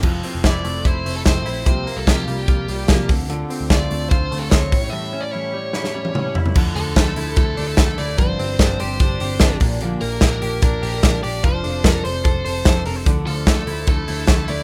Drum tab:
CC |x---------------|----------------|----------------|----------------|
HH |--o-x-o-x-o-x-o-|x-o-x-o-x-o-x-o-|x-o-x-o-x-o-x-o-|----------------|
SD |----o-------o---|----o-------o---|----o-------o---|--------oo------|
T1 |----------------|----------------|----------------|-----------o----|
T2 |----------------|----------------|----------------|------------o---|
FT |----------------|----------------|----------------|--------------oo|
BD |o---o---o---o---|o---o---o---o-o-|----o---o---o-o-|----------------|

CC |x---------------|----------------|----------------|----------------|
HH |--o-x-o-x-o-x-o-|x-o-x-o-x-o-x-o-|x-o-x-o-x-o-x-o-|x-o-x-o-x-o-x-o-|
SD |----o-------o---|----o-------o---|----o-------o---|----o-------o---|
T1 |----------------|----------------|----------------|----------------|
T2 |----------------|----------------|----------------|----------------|
FT |----------------|----------------|----------------|----------------|
BD |o---o---o---o---|o---o---o---o-o-|----o---o---o---|o---o---o---o---|

CC |----------------|
HH |x-o-x-o-x-o-x-o-|
SD |----o-------o---|
T1 |----------------|
T2 |----------------|
FT |----------------|
BD |o---o---o---o---|